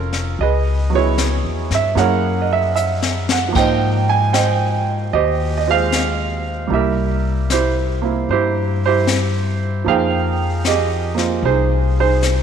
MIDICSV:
0, 0, Header, 1, 4, 480
1, 0, Start_track
1, 0, Key_signature, -4, "minor"
1, 0, Tempo, 789474
1, 233, Time_signature, 4, 2, 24, 8
1, 7556, End_track
2, 0, Start_track
2, 0, Title_t, "Grand piano"
2, 0, Program_c, 0, 0
2, 0, Control_c, 0, 64, 127
2, 0, Note_on_c, 0, 53, 52
2, 0, Note_on_c, 0, 58, 47
2, 0, Note_on_c, 0, 61, 51
2, 0, Note_on_c, 0, 63, 39
2, 0, Note_on_c, 0, 65, 55
2, 0, Note_on_c, 0, 68, 46
2, 0, Note_on_c, 0, 69, 49
2, 0, Note_on_c, 0, 70, 77
2, 0, Note_on_c, 0, 72, 34
2, 214, Note_off_c, 0, 70, 0
2, 222, Note_off_c, 0, 61, 0
2, 222, Note_off_c, 0, 65, 0
2, 224, Note_off_c, 0, 53, 0
2, 229, Note_off_c, 0, 72, 0
2, 230, Note_off_c, 0, 58, 0
2, 236, Note_off_c, 0, 63, 0
2, 240, Note_off_c, 0, 68, 0
2, 240, Control_c, 0, 64, 0
2, 246, Note_off_c, 0, 69, 0
2, 248, Note_on_c, 0, 75, 65
2, 255, Note_on_c, 0, 68, 44
2, 257, Note_on_c, 0, 71, 47
2, 362, Control_c, 0, 64, 127
2, 546, Note_on_c, 0, 54, 41
2, 559, Note_on_c, 0, 59, 33
2, 570, Note_off_c, 0, 68, 0
2, 572, Note_on_c, 0, 64, 35
2, 579, Note_on_c, 0, 68, 42
2, 579, Note_on_c, 0, 73, 74
2, 581, Note_off_c, 0, 75, 0
2, 584, Note_off_c, 0, 64, 0
2, 593, Note_on_c, 0, 64, 53
2, 1062, Note_on_c, 0, 76, 72
2, 1066, Note_off_c, 0, 73, 0
2, 1181, Note_off_c, 0, 71, 0
2, 1183, Note_off_c, 0, 64, 0
2, 1184, Note_off_c, 0, 54, 0
2, 1186, Note_off_c, 0, 68, 0
2, 1187, Note_on_c, 0, 58, 40
2, 1190, Note_on_c, 0, 61, 37
2, 1191, Note_off_c, 0, 59, 0
2, 1192, Note_off_c, 0, 76, 0
2, 1193, Note_on_c, 0, 64, 36
2, 1195, Note_on_c, 0, 68, 42
2, 1202, Control_c, 0, 64, 0
2, 1202, Note_on_c, 0, 78, 74
2, 1211, Note_on_c, 0, 73, 56
2, 1213, Note_on_c, 0, 70, 52
2, 1292, Control_c, 0, 64, 127
2, 1451, Note_off_c, 0, 78, 0
2, 1469, Note_on_c, 0, 75, 52
2, 1526, Note_off_c, 0, 75, 0
2, 1536, Note_on_c, 0, 76, 68
2, 1666, Note_off_c, 0, 76, 0
2, 1675, Note_on_c, 0, 76, 74
2, 2016, Note_off_c, 0, 76, 0
2, 2018, Note_on_c, 0, 78, 58
2, 2119, Note_on_c, 0, 53, 41
2, 2135, Note_off_c, 0, 58, 0
2, 2139, Note_off_c, 0, 73, 0
2, 2140, Note_off_c, 0, 70, 0
2, 2144, Note_on_c, 0, 58, 40
2, 2151, Note_off_c, 0, 78, 0
2, 2153, Note_off_c, 0, 61, 0
2, 2155, Note_off_c, 0, 64, 0
2, 2156, Note_off_c, 0, 68, 0
2, 2162, Control_c, 0, 64, 0
2, 2162, Note_on_c, 0, 63, 41
2, 2165, Note_on_c, 0, 79, 71
2, 2176, Note_on_c, 0, 72, 51
2, 2177, Note_on_c, 0, 75, 52
2, 2265, Control_c, 0, 64, 127
2, 2469, Note_off_c, 0, 79, 0
2, 2489, Note_on_c, 0, 80, 76
2, 2627, Note_off_c, 0, 80, 0
2, 2632, Note_off_c, 0, 72, 0
2, 2634, Note_on_c, 0, 79, 65
2, 2636, Note_off_c, 0, 75, 0
2, 2641, Note_on_c, 0, 72, 49
2, 2645, Note_on_c, 0, 75, 44
2, 3091, Note_off_c, 0, 79, 0
2, 3112, Note_off_c, 0, 75, 0
2, 3120, Note_off_c, 0, 72, 0
2, 3121, Note_on_c, 0, 75, 71
2, 3129, Note_on_c, 0, 67, 48
2, 3129, Note_on_c, 0, 72, 52
2, 3372, Note_off_c, 0, 75, 0
2, 3389, Note_on_c, 0, 75, 55
2, 3447, Note_on_c, 0, 60, 37
2, 3448, Note_off_c, 0, 75, 0
2, 3452, Note_on_c, 0, 65, 35
2, 3463, Note_on_c, 0, 56, 40
2, 3466, Note_off_c, 0, 72, 0
2, 3469, Note_on_c, 0, 77, 80
2, 3475, Note_on_c, 0, 72, 55
2, 4058, Note_off_c, 0, 53, 0
2, 4058, Note_off_c, 0, 67, 0
2, 4058, Note_on_c, 0, 55, 39
2, 4063, Note_off_c, 0, 77, 0
2, 4064, Note_off_c, 0, 58, 0
2, 4065, Note_off_c, 0, 72, 0
2, 4073, Note_on_c, 0, 58, 39
2, 4076, Note_off_c, 0, 60, 0
2, 4078, Note_off_c, 0, 65, 0
2, 4080, Note_off_c, 0, 63, 0
2, 4081, Note_on_c, 0, 64, 37
2, 4083, Control_c, 0, 64, 0
2, 4084, Note_off_c, 0, 56, 0
2, 4090, Note_on_c, 0, 67, 42
2, 4096, Note_on_c, 0, 76, 62
2, 4102, Note_on_c, 0, 70, 49
2, 4188, Control_c, 0, 64, 127
2, 4569, Note_off_c, 0, 64, 0
2, 4570, Note_off_c, 0, 67, 0
2, 4572, Note_on_c, 0, 72, 63
2, 4578, Note_on_c, 0, 64, 44
2, 4579, Note_on_c, 0, 67, 40
2, 4580, Note_off_c, 0, 76, 0
2, 4866, Note_off_c, 0, 58, 0
2, 4875, Note_on_c, 0, 58, 33
2, 4882, Note_on_c, 0, 60, 34
2, 4883, Note_off_c, 0, 64, 0
2, 4892, Note_on_c, 0, 64, 35
2, 5019, Note_off_c, 0, 72, 0
2, 5024, Note_off_c, 0, 70, 0
2, 5050, Note_off_c, 0, 67, 0
2, 5050, Note_on_c, 0, 72, 70
2, 5052, Note_off_c, 0, 64, 0
2, 5059, Note_on_c, 0, 67, 47
2, 5061, Note_on_c, 0, 64, 52
2, 5351, Note_off_c, 0, 72, 0
2, 5382, Note_off_c, 0, 67, 0
2, 5384, Note_on_c, 0, 72, 80
2, 5385, Note_off_c, 0, 64, 0
2, 5391, Note_on_c, 0, 67, 55
2, 5394, Note_on_c, 0, 64, 52
2, 5979, Note_off_c, 0, 72, 0
2, 5982, Note_off_c, 0, 67, 0
2, 5984, Note_off_c, 0, 64, 0
2, 5985, Note_off_c, 0, 55, 0
2, 5985, Note_on_c, 0, 53, 46
2, 5986, Note_off_c, 0, 58, 0
2, 5995, Note_on_c, 0, 58, 44
2, 5997, Note_off_c, 0, 60, 0
2, 6001, Control_c, 0, 64, 0
2, 6007, Note_on_c, 0, 72, 55
2, 6007, Note_on_c, 0, 77, 68
2, 6008, Note_on_c, 0, 63, 45
2, 6012, Note_on_c, 0, 68, 47
2, 6019, Note_on_c, 0, 79, 54
2, 6121, Control_c, 0, 64, 127
2, 6455, Note_off_c, 0, 77, 0
2, 6483, Note_off_c, 0, 68, 0
2, 6489, Note_on_c, 0, 75, 67
2, 6492, Note_on_c, 0, 68, 44
2, 6494, Note_on_c, 0, 67, 47
2, 6767, Note_off_c, 0, 58, 0
2, 6777, Note_on_c, 0, 58, 36
2, 6787, Note_on_c, 0, 60, 32
2, 6798, Note_on_c, 0, 65, 37
2, 6934, Note_off_c, 0, 72, 0
2, 6955, Note_off_c, 0, 63, 0
2, 6957, Note_off_c, 0, 68, 0
2, 6964, Note_on_c, 0, 63, 43
2, 6964, Note_on_c, 0, 72, 70
2, 6966, Note_on_c, 0, 68, 46
2, 6974, Note_off_c, 0, 75, 0
2, 7266, Note_off_c, 0, 72, 0
2, 7286, Note_off_c, 0, 63, 0
2, 7288, Note_off_c, 0, 68, 0
2, 7295, Note_on_c, 0, 63, 46
2, 7297, Note_on_c, 0, 68, 46
2, 7297, Note_on_c, 0, 72, 73
2, 7417, Note_off_c, 0, 67, 0
2, 7556, Note_off_c, 0, 53, 0
2, 7556, Note_off_c, 0, 58, 0
2, 7556, Note_off_c, 0, 60, 0
2, 7556, Note_off_c, 0, 63, 0
2, 7556, Note_off_c, 0, 65, 0
2, 7556, Note_off_c, 0, 68, 0
2, 7556, Note_off_c, 0, 72, 0
2, 7556, Note_off_c, 0, 79, 0
2, 7556, End_track
3, 0, Start_track
3, 0, Title_t, "Upright bass"
3, 0, Program_c, 1, 32
3, 0, Note_on_c, 1, 29, 62
3, 211, Note_off_c, 1, 29, 0
3, 237, Note_on_c, 1, 37, 61
3, 851, Note_off_c, 1, 37, 0
3, 874, Note_on_c, 1, 40, 51
3, 1023, Note_off_c, 1, 40, 0
3, 1036, Note_on_c, 1, 43, 53
3, 1183, Note_off_c, 1, 43, 0
3, 1189, Note_on_c, 1, 42, 64
3, 2128, Note_off_c, 1, 42, 0
3, 2159, Note_on_c, 1, 44, 59
3, 3094, Note_off_c, 1, 44, 0
3, 3121, Note_on_c, 1, 39, 65
3, 4054, Note_off_c, 1, 39, 0
3, 4075, Note_on_c, 1, 36, 61
3, 5010, Note_off_c, 1, 36, 0
3, 5040, Note_on_c, 1, 43, 58
3, 5972, Note_off_c, 1, 43, 0
3, 5994, Note_on_c, 1, 41, 58
3, 6928, Note_off_c, 1, 41, 0
3, 6947, Note_on_c, 1, 36, 70
3, 7556, Note_off_c, 1, 36, 0
3, 7556, End_track
4, 0, Start_track
4, 0, Title_t, "Drums"
4, 76, Note_on_c, 9, 38, 23
4, 137, Note_off_c, 9, 38, 0
4, 237, Note_on_c, 9, 25, 31
4, 717, Note_on_c, 9, 38, 40
4, 717, Note_on_c, 9, 44, 49
4, 777, Note_off_c, 9, 38, 0
4, 777, Note_off_c, 9, 44, 0
4, 1037, Note_on_c, 9, 38, 20
4, 1098, Note_off_c, 9, 38, 0
4, 1199, Note_off_c, 9, 25, 0
4, 1199, Note_on_c, 9, 25, 27
4, 1199, Note_on_c, 9, 38, 22
4, 1260, Note_off_c, 9, 38, 0
4, 1679, Note_on_c, 9, 44, 42
4, 1739, Note_off_c, 9, 44, 0
4, 1839, Note_on_c, 9, 38, 37
4, 1900, Note_off_c, 9, 38, 0
4, 1999, Note_on_c, 9, 38, 53
4, 2060, Note_off_c, 9, 38, 0
4, 2159, Note_off_c, 9, 25, 0
4, 2159, Note_on_c, 9, 25, 25
4, 2159, Note_on_c, 9, 36, 50
4, 2159, Note_on_c, 9, 38, 21
4, 2159, Note_on_c, 9, 51, 47
4, 2220, Note_off_c, 9, 36, 0
4, 2220, Note_off_c, 9, 38, 0
4, 2220, Note_off_c, 9, 51, 0
4, 2638, Note_on_c, 9, 38, 36
4, 2638, Note_on_c, 9, 44, 39
4, 2699, Note_off_c, 9, 38, 0
4, 2699, Note_off_c, 9, 44, 0
4, 3123, Note_off_c, 9, 25, 0
4, 3123, Note_on_c, 9, 25, 29
4, 3602, Note_on_c, 9, 38, 37
4, 3602, Note_on_c, 9, 44, 44
4, 3663, Note_off_c, 9, 38, 0
4, 3663, Note_off_c, 9, 44, 0
4, 4081, Note_off_c, 9, 25, 0
4, 4081, Note_on_c, 9, 25, 25
4, 4559, Note_on_c, 9, 38, 33
4, 4559, Note_on_c, 9, 44, 43
4, 4620, Note_off_c, 9, 38, 0
4, 4620, Note_off_c, 9, 44, 0
4, 5039, Note_off_c, 9, 25, 0
4, 5039, Note_on_c, 9, 25, 28
4, 5517, Note_on_c, 9, 38, 38
4, 5517, Note_on_c, 9, 44, 44
4, 5577, Note_off_c, 9, 38, 0
4, 5577, Note_off_c, 9, 44, 0
4, 5996, Note_off_c, 9, 25, 0
4, 5996, Note_on_c, 9, 25, 29
4, 6473, Note_on_c, 9, 38, 34
4, 6473, Note_on_c, 9, 44, 45
4, 6534, Note_off_c, 9, 38, 0
4, 6534, Note_off_c, 9, 44, 0
4, 6795, Note_on_c, 9, 38, 21
4, 6856, Note_off_c, 9, 38, 0
4, 6952, Note_off_c, 9, 25, 0
4, 6952, Note_on_c, 9, 25, 25
4, 7433, Note_on_c, 9, 38, 32
4, 7433, Note_on_c, 9, 44, 44
4, 7494, Note_off_c, 9, 38, 0
4, 7494, Note_off_c, 9, 44, 0
4, 7556, Note_off_c, 9, 25, 0
4, 7556, End_track
0, 0, End_of_file